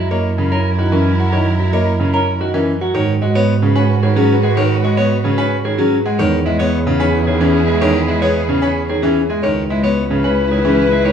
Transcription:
Already playing: double bass F#2, grand piano F#3, clean electric guitar E4, string section E4 A#4, clarinet E4, marimba E5
0.11 grand piano A#3, clean electric guitar C#5, marimba D#5
0.38 grand piano C#3, clean electric guitar C#4, marimba A#4
0.52 grand piano C#4, clean electric guitar A#4, marimba A#5
0.78 grand piano D#3, clean electric guitar F#4, marimba D#5
0.92 grand piano E3, clean electric guitar C#4, marimba A#4
1.19 grand piano F#3, clean electric guitar F#4, marimba F#5
1.33 grand piano D#3, clean electric guitar C#5, marimba D#5
1.60 grand piano F#3, clean electric guitar E4, marimba E5
1.73 grand piano A#3, clean electric guitar C#5, marimba D#5
2.00 grand piano C#3, clean electric guitar C#4, marimba A#4
2.13 grand piano C#4, clean electric guitar A#4, marimba A#5
2.40 grand piano D#3, clean electric guitar F#4, marimba D#5
2.54 grand piano E3, clean electric guitar C#4, marimba A#4
2.81 grand piano F#3, clean electric guitar F#4, marimba F#5
2.94 double bass G#2, grand piano D#3, clarinet F#4, string section F#4 B4, marimba C#5, clean electric guitar C#5
3.22 grand piano G#3, clean electric guitar F#4, marimba D#5
3.35 grand piano B3, marimba C#5, clean electric guitar C#5
3.62 grand piano C#3, clean electric guitar C#4, marimba G#4
3.76 grand piano C#4, clean electric guitar B4, marimba G#5
4.03 grand piano D#3, clean electric guitar G#4, marimba C#5
4.16 grand piano F#3, clean electric guitar C#4, marimba G#4
4.43 grand piano G#3, clean electric guitar G#4, marimba F#5
4.57 grand piano D#3, marimba C#5, clean electric guitar C#5
4.84 grand piano G#3, clean electric guitar F#4, marimba D#5
4.97 grand piano B3, clean electric guitar C#5, marimba C#5
5.24 grand piano C#3, clean electric guitar C#4, marimba G#4
5.38 grand piano C#4, clean electric guitar B4, marimba G#5
5.65 grand piano D#3, clean electric guitar G#4, marimba C#5
5.78 grand piano F#3, clean electric guitar C#4, marimba G#4
6.06 grand piano G#3, clean electric guitar G#4, marimba F#5
6.19 double bass E2, grand piano D#3, string section E4 G#4, clarinet G#4, clean electric guitar C#5, marimba C#5
6.46 grand piano G#3, clean electric guitar E4, marimba D#5
6.59 grand piano B3, clean electric guitar C#5, marimba C#5
6.87 grand piano C#3, clean electric guitar C#4, marimba G#4
7.00 grand piano C#4, clean electric guitar B4, marimba G#5
7.27 grand piano D#3, clean electric guitar G#4, marimba C#5
7.41 grand piano E3, clean electric guitar C#4, marimba G#4
7.67 grand piano G#3, clean electric guitar G#4, marimba E5
7.81 grand piano D#3, clean electric guitar C#5, marimba C#5
8.08 grand piano G#3, clean electric guitar E4, marimba D#5
8.22 grand piano B3, clean electric guitar C#5, marimba C#5
8.49 grand piano C#3, clean electric guitar C#4, marimba G#4
8.62 grand piano C#4, clean electric guitar B4, marimba G#5
8.89 grand piano D#3, clean electric guitar G#4, marimba C#5
9.02 grand piano E3, clean electric guitar C#4, marimba G#4
9.30 grand piano G#3, clean electric guitar G#4, marimba E5
9.42 double bass C#2, grand piano D#3, string section E4 B4, clarinet B4, marimba C#5, clean electric guitar C#5
9.70 grand piano G#3, clean electric guitar E4, marimba D#5
9.84 grand piano B3, clean electric guitar C#5, marimba C#5
10.10 grand piano C#3, clean electric guitar C#4, marimba G#4
10.24 grand piano C#4, clean electric guitar B4, marimba G#5
10.51 grand piano D#3, clean electric guitar G#4, marimba C#5
10.65 grand piano E3, clean electric guitar C#4, marimba G#4
10.92 grand piano G#3, clean electric guitar G#4, marimba E5
11.05 grand piano D#3, clean electric guitar C#5, marimba C#5

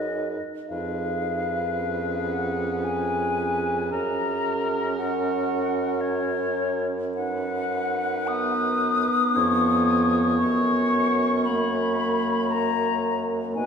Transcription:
Already playing: bassoon F#2, french horn D#4, clarinet G#4, oboe B4, flute D#5
0.69 bassoon F2, clarinet G#4, oboe B4, flute F5
1.78 french horn C#4
2.32 flute F#5
2.84 flute G#5
3.91 bassoon F#2, french horn C#4, oboe A#4, flute A#5
4.98 clarinet F#4, flute F#5
6.01 flute C#5
7.15 clarinet D#4, flute F#5
7.19 oboe B4
8.28 french horn B3, flute D#6
9.33 bassoon F2, clarinet C#4, oboe C#5
10.38 bassoon F#2, flute C#6
11.45 french horn A#3, flute B5
12.50 flute A#5
13.55 bassoon B2, french horn B3, clarinet D#4, oboe B4, flute G#5

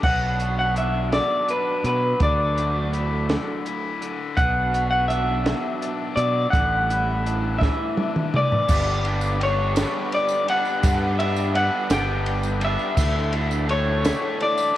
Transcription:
0.03 fingered electric bass B1, overdriven electric guitar B2 F#3 B3 D4, clean electric guitar F#5, kick, crash
0.39 overdriven electric guitar F#4, closed hi-hat
0.59 clean electric guitar F#5
0.76 overdriven electric guitar D4, clean electric guitar E5, closed hi-hat
1.12 overdriven electric guitar F#3, clean electric guitar D5, snare, closed hi-hat
1.48 overdriven electric guitar D4, clean electric guitar B4, closed hi-hat
1.84 fingered electric bass B2, overdriven electric guitar F#3, clean electric guitar B4, closed hi-hat
2.20 fingered electric bass D2, overdriven electric guitar D3 F#3 A3 D4, clean electric guitar D5, kick, closed hi-hat
2.56 overdriven electric guitar F#4, closed hi-hat
2.93 overdriven electric guitar E4, closed hi-hat
3.29 overdriven electric guitar D3, snare, closed hi-hat
3.65 overdriven electric guitar E4, closed hi-hat
4.01 overdriven electric guitar D3, closed hi-hat
4.37 fingered electric bass B1, overdriven electric guitar B2 F#3 B3 D4, clean electric guitar F#5, kick, closed hi-hat
4.73 overdriven electric guitar F#4, closed hi-hat
4.91 clean electric guitar F#5
5.08 overdriven electric guitar D4, clean electric guitar E5, closed hi-hat
5.43 overdriven electric guitar F#3, snare, closed hi-hat
5.81 overdriven electric guitar D4, closed hi-hat
6.16 fingered electric bass B2, overdriven electric guitar F#3, clean electric guitar D5, closed hi-hat
6.50 fingered electric bass A1, overdriven electric guitar A2 E3 G3, clean electric guitar F#5, kick, closed hi-hat
6.55 overdriven electric guitar E4
6.89 overdriven electric guitar E4, closed hi-hat
7.26 overdriven electric guitar D4, closed hi-hat
7.58 overdriven electric guitar E3, clean electric guitar E5, kick, snare
7.97 overdriven electric guitar D4, high tom
8.16 mid tom
8.33 overdriven electric guitar E3, clean electric guitar D5, mid tom
8.52 floor tom
8.68 fingered electric bass G1, overdriven electric guitar G2 D3 G3 B3 D4 G4, kick, crash, tambourine
9.03 overdriven electric guitar G2 D3 G3 B3 D4 G4, ride
9.21 tambourine
9.39 overdriven electric guitar G2 D3 G3 B3 D4 G4, ride
9.43 clean electric guitar C#5
9.75 overdriven electric guitar G2 D3 G3 B3 D4 G4, snare, ride, tambourine
10.12 clean electric guitar D5, ride
10.29 tambourine
10.48 overdriven electric guitar G2 D3 G3 B3 D4 G4, clean electric guitar F#5, ride
10.65 tambourine
10.83 overdriven electric guitar G2 D3 G3 B3 D4 G4, fingered electric bass G2, kick, ride, tambourine
11.19 overdriven electric guitar G2 D3 G3 B3 D4 G4, clean electric guitar E5, ride
11.36 tambourine
11.54 overdriven electric guitar G2 D3 G3 B3 D4 G4, clean electric guitar F#5, ride
11.89 fingered electric bass G1, overdriven electric guitar G2 D3 G3 B3 D4 G4, clean electric guitar G5, snare, ride, tambourine
12.26 ride
12.43 tambourine
12.60 overdriven electric guitar G2 D3 G3 B3 D4 G4, ride
12.65 clean electric guitar E5
12.79 tambourine
12.96 fingered electric bass D2, overdriven electric guitar D3 E3 A3 D4 E4 A4, kick, tambourine, crash
13.31 overdriven electric guitar D3 E3 A3 D4 E4 A4, ride
13.51 tambourine
13.68 overdriven electric guitar D3 E3 A3 D4 E4 A4, clean electric guitar C#5, ride
14.02 overdriven electric guitar D3 E3 A3 D4 E4 A4, snare, ride, tambourine
14.40 clean electric guitar D5, ride
14.57 tambourine
14.74 overdriven electric guitar D3 E3

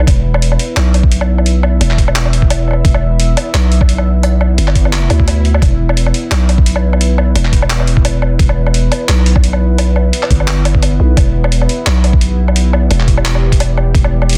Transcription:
Already playing: ambient pad B3 E4
0.07 808-style bass E1, ambient pad E5, kick, closed hi-hat, low woodblock
0.34 low woodblock
0.42 closed hi-hat
0.52 low woodblock
0.59 closed hi-hat
0.77 808-style bass B1, clap, closed hi-hat, low woodblock
0.94 closed hi-hat, low woodblock
1.03 kick
1.12 closed hi-hat
1.21 low woodblock
1.38 low woodblock
1.46 closed hi-hat
1.63 low woodblock
1.81 808-style bass E1, closed hi-hat, low woodblock
1.91 clap
1.98 kick, closed hi-hat
2.08 low woodblock
2.16 clap, closed hi-hat
2.25 low woodblock
2.33 closed hi-hat
2.42 kick
2.50 closed hi-hat, low woodblock
2.68 low woodblock
2.71 low woodblock
2.73 low woodblock
2.85 808-style bass E1, kick, closed hi-hat
2.94 low woodblock
3.20 closed hi-hat
3.37 closed hi-hat, low woodblock
3.54 808-style bass B1, clap, closed hi-hat, low woodblock
3.72 closed hi-hat
3.81 kick, low woodblock
3.89 closed hi-hat
3.98 low woodblock
4.23 closed hi-hat, low woodblock
4.41 low woodblock
4.58 808-style bass G1, closed hi-hat
4.68 clap, low woodblock
4.75 kick, closed hi-hat
4.85 low woodblock
4.93 clap, closed hi-hat, swell
5.10 808-style bass D2, closed hi-hat, low woodblock
5.20 kick
5.28 closed hi-hat, low woodblock
5.45 closed hi-hat
5.54 low woodblock
5.62 808-style bass E1, ambient pad B4, kick, closed hi-hat, low woodblock
5.89 low woodblock
5.97 closed hi-hat
6.06 low woodblock
6.14 closed hi-hat
6.31 808-style bass B1, clap, closed hi-hat, low woodblock
6.49 closed hi-hat, low woodblock
6.58 kick
6.66 closed hi-hat
6.76 low woodblock
6.93 low woodblock
7.01 closed hi-hat
7.18 low woodblock
7.35 808-style bass E1, closed hi-hat, low woodblock
7.45 clap
7.53 kick, closed hi-hat
7.62 low woodblock
7.70 clap, closed hi-hat
7.80 low woodblock
7.87 closed hi-hat
7.97 kick
8.05 closed hi-hat, low woodblock
8.22 low woodblock
8.39 808-style bass E1, kick, closed hi-hat
8.49 low woodblock
8.67 low woodblock
8.74 closed hi-hat
8.92 closed hi-hat, low woodblock
9.09 808-style bass B1, clap, closed hi-hat, low woodblock
9.26 closed hi-hat
9.36 kick, low woodblock
9.44 closed hi-hat
9.53 low woodblock
9.78 closed hi-hat, low woodblock
9.96 low woodblock
10.13 closed hi-hat
10.23 clap, low woodblock
10.30 808-style bass G1, kick, closed hi-hat
10.40 low woodblock
10.48 clap, closed hi-hat
10.65 closed hi-hat, low woodblock
10.75 kick
10.82 closed hi-hat, low woodblock
11.00 808-style bass B1
11.17 808-style bass E1, ambient pad G4, kick, closed hi-hat, low woodblock
11.44 low woodblock
11.52 closed hi-hat
11.62 low woodblock
11.69 closed hi-hat
11.87 808-style bass B1, clap, closed hi-hat, low woodblock
12.04 closed hi-hat, low woodblock
12.13 kick
12.21 closed hi-hat
12.48 low woodblock
12.56 closed hi-hat
12.73 low woodblock
12.91 808-style bass E1, closed hi-hat, low woodblock
13.00 clap
13.08 kick, closed hi-hat
13.17 low woodblock
13.25 clap, closed hi-hat
13.35 low woodblock
13.52 kick, closed hi-hat
13.60 closed hi-hat, low woodblock
13.78 low woodblock
13.95 808-style bass E1, kick, closed hi-hat
14.04 low woodblock
14.22 low woodblock
14.29 closed hi-hat
14.33 closed hi-hat

